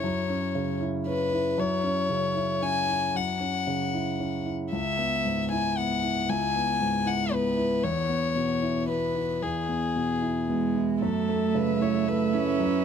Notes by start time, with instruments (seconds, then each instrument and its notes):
Already playing: grand piano E4, violin C#5
0.04 grand piano F#2
0.30 grand piano C#4
0.55 grand piano C#3
0.81 grand piano E4
1.07 grand piano C#4, violin B4
1.33 grand piano E4
1.58 grand piano F#2, violin C#5
1.84 grand piano C#4
2.09 grand piano C#3
2.35 grand piano E4
2.62 grand piano C#4, violin G#5
2.88 grand piano E4
3.15 grand piano F#2, violin F#5
3.41 grand piano C#4
3.67 grand piano C#3
3.94 grand piano E4
4.20 grand piano C#4
4.46 grand piano E4
4.73 grand piano C#2, violin E5
4.98 grand piano B3
5.25 grand piano G#2
5.52 grand piano E4, violin G#5
5.78 grand piano B3, violin F#5
6.03 grand piano E4
6.29 grand piano C#2, violin G#5
6.56 grand piano B3
6.81 grand piano G#2
7.06 grand piano E4, violin F#5
7.32 grand piano B3, violin B4
7.57 grand piano E4
7.84 grand piano E2, violin C#5
8.09 grand piano B3
8.36 grand piano B2
8.62 grand piano E4
8.88 grand piano B3, violin B4
9.15 grand piano E4
9.42 grand piano E2, violin G#4
9.69 grand piano B3
9.96 grand piano B2
10.22 grand piano E4
10.48 cello G#3, grand piano B3
10.75 grand piano E4
11.01 grand piano F#2, cello A3, violin A4, viola E5
11.29 grand piano A3
11.55 grand piano C#3, violin B4
11.81 grand piano E4, violin C#5
12.07 grand piano A3, violin B4
12.33 cello C#4, grand piano E4
12.60 grand piano F#2